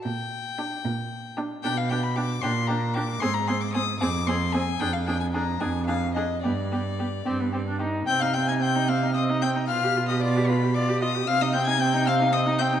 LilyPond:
<<
  \new Staff \with { instrumentName = "Violin" } { \time 6/8 \key g \minor \tempo 4. = 75 g''2~ g''8 r8 | \key c \minor g''16 f''16 g''16 b''16 d'''8 c'''8 bes''8 d'''8 | c'''16 bes''16 c'''16 d'''16 ees'''8 d'''8 c'''8 aes''8 | g''16 f''16 g''16 aes''16 bes''8 aes''8 f''8 ees''8 |
d''2~ d''8 r8 | g'''16 f'''16 g'''16 aes'''16 g'''8 f'''8 ees'''8 g'''8 | f'''8. ees'''16 d'''8 b''8 d'''8 ees'''8 | f'''16 ees'''16 g'''16 aes'''16 g'''8 f'''8 ees'''8 g'''8 | }
  \new Staff \with { instrumentName = "Violin" } { \time 6/8 \key g \minor r4 g'8 r4 g'8 | \key c \minor g'8 g'8 g'8 g'8 g'8 g'8 | aes'8 aes'8 aes'8 aes'8 aes'8 aes'8 | aes'8 aes'8 aes'8 aes'8 aes'8 aes'8 |
g'8 g'8 g'8 g'8 g'8 g'8 | g''16 f''16 g''16 aes''16 g''8 f''8 ees''8 g''8 | f''8. ees''16 d''8 b'8 d''8 ees''8 | f''16 ees''16 g''16 aes''16 g''8 f''8 ees''8 g''8 | }
  \new Staff \with { instrumentName = "Viola" } { \time 6/8 \key g \minor r4 d'8 r4 d'8 | \key c \minor d'8 d'8 d'8 d'8 d'8 d'8 | c'8 c'8 c'8 c'8 c'8 c'8 | d'8 d'8 d'8 d'8 d'8 d'8 |
b8 b8 b8 c'16 b16 c'16 d'16 ees'8 | c'16 ees'16 c'16 ees'16 c'16 ees'16 c'16 ees'16 c'16 ees'16 c'16 ees'16 | f'16 g'16 f'16 g'16 f'16 g'16 f'16 g'16 f'16 g'16 f'16 g'16 | c'16 ees'16 c'16 ees'16 c'16 ees'16 c'16 ees'16 c'16 ees'16 c'16 ees'16 | }
  \new Staff \with { instrumentName = "Cello" } { \clef bass \time 6/8 \key g \minor bes,4. bes,4. | \key c \minor b,4. bes,4. | aes,4. f,4. | f,4. f,4. |
g,4. g,4. | c2. | b,2. | c2. | }
>>